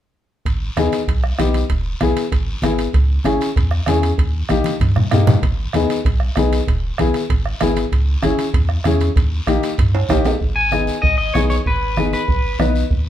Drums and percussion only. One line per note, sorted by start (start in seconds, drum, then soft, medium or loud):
0.45 bombo low medium
0.45 high conga soft
0.45 high timbale medium
0.45 long guiro medium
0.77 bombo rim medium
0.77 high conga medium
0.77 high timbale medium
0.77 short guiro medium
0.92 high timbale medium
0.92 short guiro medium
1.08 bombo low medium
1.08 high conga soft
1.08 high timbale medium
1.08 long guiro medium
1.24 bombo rim medium
1.39 bombo rim medium
1.39 high conga medium
1.39 high timbale medium
1.39 short guiro medium
1.54 high timbale medium
1.54 short guiro medium
1.70 bombo low medium
1.70 high conga soft
1.70 high timbale medium
1.70 long guiro medium
2.01 bombo rim medium
2.01 high conga medium
2.01 high timbale medium
2.01 short guiro medium
2.16 high timbale medium
2.16 short guiro medium
2.32 bombo low medium
2.32 high conga soft
2.32 high timbale medium
2.32 long guiro medium
2.62 bombo rim medium
2.62 high conga medium
2.62 high timbale medium
2.62 short guiro medium
2.78 high timbale medium
2.78 short guiro medium
2.93 bombo low medium
2.93 high conga soft
2.93 high timbale medium
2.93 long guiro medium
3.24 bombo rim medium
3.24 high conga medium
3.24 high timbale medium
3.24 short guiro medium
3.41 high timbale medium
3.41 short guiro medium
3.56 bombo low medium
3.56 high conga soft
3.56 high timbale medium
3.56 long guiro medium
3.71 bombo rim medium
3.86 bombo rim medium
3.86 high conga medium
3.86 high timbale medium
3.86 low timbale medium
3.86 short guiro medium
4.03 high timbale medium
4.03 short guiro medium
4.18 bombo low medium
4.18 high conga soft
4.18 high timbale medium
4.18 long guiro medium
4.49 bombo rim medium
4.49 high conga medium
4.49 high timbale medium
4.49 short guiro medium
4.64 high conga medium
4.64 high timbale medium
4.64 short guiro medium
4.80 bombo low medium
4.80 high conga medium
4.80 high timbale medium
4.80 long guiro medium
4.96 bombo rim medium
4.96 low conga medium
5.11 bombo rim medium
5.11 low conga medium
5.11 high timbale medium
5.11 low timbale medium
5.11 short guiro medium
5.27 low conga loud
5.27 high timbale medium
5.27 short guiro medium
5.43 bombo low medium
5.43 high conga soft
5.43 high timbale medium
5.43 long guiro medium
5.73 bombo rim medium
5.73 high conga medium
5.73 high timbale medium
5.73 short guiro medium
5.90 high timbale medium
5.90 short guiro medium
6.05 bombo low medium
6.05 high conga soft
6.05 high timbale medium
6.05 long guiro medium
6.20 bombo rim medium
6.36 bombo rim medium
6.36 high conga medium
6.36 high timbale medium
6.36 short guiro medium
6.53 high timbale medium
6.53 short guiro medium
6.67 bombo low medium
6.67 high conga soft
6.67 high timbale medium
6.67 long guiro medium
6.98 bombo rim medium
6.98 high conga medium
6.98 high timbale medium
6.98 short guiro medium
7.14 high timbale medium
7.14 short guiro medium
7.30 bombo low medium
7.30 high conga soft
7.30 high timbale medium
7.30 long guiro medium
7.46 bombo rim medium
7.61 bombo rim medium
7.61 high conga medium
7.61 high timbale medium
7.61 low timbale medium
7.61 short guiro medium
7.76 high timbale medium
7.76 short guiro medium
7.92 bombo low medium
7.92 high conga soft
7.92 high timbale medium
7.92 long guiro medium
8.23 bombo rim medium
8.23 high conga medium
8.23 high timbale medium
8.23 short guiro medium
8.39 high timbale medium
8.39 short guiro medium
8.54 bombo low medium
8.54 high conga soft
8.54 high timbale medium
8.54 long guiro medium
8.69 bombo rim medium
8.84 bombo rim medium
8.84 high conga medium
8.84 high timbale medium
8.84 short guiro medium
9.00 high timbale medium
9.00 short guiro medium
9.16 bombo low medium
9.16 high conga soft
9.16 high timbale medium
9.16 long guiro medium
9.47 bombo rim medium
9.47 high conga medium
9.47 high timbale medium
9.47 short guiro medium
9.63 high timbale medium
9.63 short guiro medium
9.78 bombo low medium
9.78 high conga soft
9.78 high timbale medium
9.78 long guiro medium
9.95 high timbale medium
10.09 bombo low medium
10.09 bombo rim medium
10.09 high conga medium
10.09 high timbale medium
10.09 short guiro medium
10.25 low timbale medium
10.25 short guiro medium
10.40 bombo low medium
10.40 high conga soft
10.40 long guiro medium
10.71 bombo rim medium
10.71 high conga medium
10.71 short guiro medium
10.87 short guiro medium
11.03 bombo low medium
11.03 high conga soft
11.03 long guiro medium
11.35 bombo rim medium
11.35 high conga medium
11.35 short guiro medium
11.50 short guiro medium
11.66 bombo low medium
11.66 high conga soft
11.66 long guiro medium
11.97 bombo rim medium
11.97 high conga medium
11.97 short guiro medium
12.13 short guiro medium
12.28 bombo low medium
12.28 high conga soft
12.28 long guiro medium
12.60 bombo rim medium
12.60 high conga medium
12.60 short guiro medium
12.75 short guiro medium
12.91 bombo low medium
12.91 high conga soft
12.91 long guiro medium